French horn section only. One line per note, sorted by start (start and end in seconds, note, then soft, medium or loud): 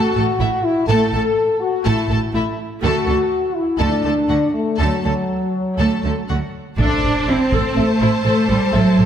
0.00 0.64 F#4 medium
0.64 0.89 E4 medium
0.88 1.60 A4 medium
1.60 1.85 F#4 medium
1.87 2.21 E4 medium
2.35 2.58 E4 medium
2.83 3.52 F#4 medium
3.54 3.79 E4 medium
3.80 4.54 D4 medium
4.53 4.78 A3 soft
4.80 6.54 F#3 medium
6.80 6.96 A4 soft
6.80 6.97 E5 soft
7.77 7.94 A4 soft
7.77 7.94 E5 medium
8.73 8.91 A4 soft
8.73 8.91 E5 soft